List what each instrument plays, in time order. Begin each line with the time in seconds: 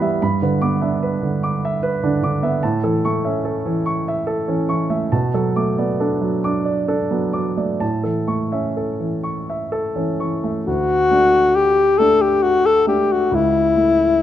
Already playing: grand piano G2 E3 B3 B4 E5 B5
0.00 grand piano G3 E5
0.22 grand piano G2 B5
0.42 grand piano D3 B4
0.62 grand piano B3 D6
0.81 grand piano D4 E5
1.03 grand piano B4
1.22 grand piano D3
1.43 grand piano D6
1.65 grand piano E5
1.83 grand piano B4
2.03 grand piano D3 D4
2.23 grand piano D3 D6
2.43 grand piano B3 E5
2.63 grand piano A2 A5
2.84 grand piano E3 A4
3.05 grand piano A3 C#6
3.25 grand piano C#4 E5
3.45 grand piano A4
3.66 grand piano E3
3.86 grand piano C#6
4.08 grand piano E5
4.27 grand piano A4
4.48 grand piano E3 C#4
4.69 grand piano E3 C#6
4.90 grand piano A3 E5
5.12 grand piano B2 A5
5.34 grand piano F#3 A4
5.56 grand piano A3 D6
5.78 grand piano B3 D5
6.00 grand piano D4 A4
6.21 grand piano F#3
6.44 grand piano D4 D6
6.65 grand piano D5
6.88 grand piano D4 A4
7.11 grand piano F#3 B3
7.33 grand piano F#3 D6
7.57 grand piano A3 D5
7.80 grand piano A2 A5
8.04 grand piano E3 A4
8.27 grand piano A3 C#6
8.52 grand piano C#4 E5
8.77 grand piano A4
9.00 grand piano E3
9.24 grand piano C#6
9.50 grand piano E5
9.72 grand piano A4
9.96 grand piano E3 C#4
10.20 grand piano E3 C#6
10.44 grand piano A3 E5
10.66 grand piano D2, alto saxophone F#4
11.11 grand piano A3 D4
11.55 alto saxophone G4
11.98 grand piano A3 D4, alto saxophone A4
12.22 alto saxophone G4
12.43 alto saxophone F#4
12.66 alto saxophone A4
12.87 grand piano A3 D4, alto saxophone G4
13.12 alto saxophone F#4
13.31 grand piano C#2, alto saxophone E4
13.76 grand piano A3 E4